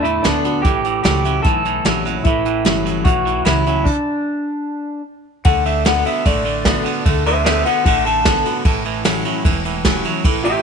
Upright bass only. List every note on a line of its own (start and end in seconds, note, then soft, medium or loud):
0.00 0.24 E2 medium
0.25 0.64 D2 medium
0.65 1.04 A1 medium
1.05 1.44 C#2 medium
1.45 1.84 B1 medium
1.85 2.24 A#1 medium
2.26 2.64 A1 medium
2.65 3.04 G1 medium
3.05 3.44 B1 medium
3.46 3.84 C#2 medium
5.45 6.01 D2 medium
6.26 6.82 A1 medium
7.05 7.61 D2 medium
7.86 8.41 A1 medium
8.65 9.21 A1 medium
9.45 10.01 E1 medium
10.25 10.52 A1 medium